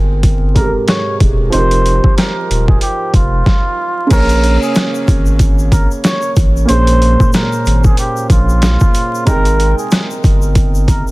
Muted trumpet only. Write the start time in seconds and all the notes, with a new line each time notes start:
0.56 A#4
0.88 C#5
1.53 C5
2.17 A#4
2.68 G#4
2.82 G4
3.15 F4
4.11 A#4
4.62 G#4
5.72 A#4
6.05 C#5
6.69 C5
7.33 A#4
7.85 G#4
7.98 G4
8.30 F4
9.26 A#4
9.78 G#4
10.88 A#4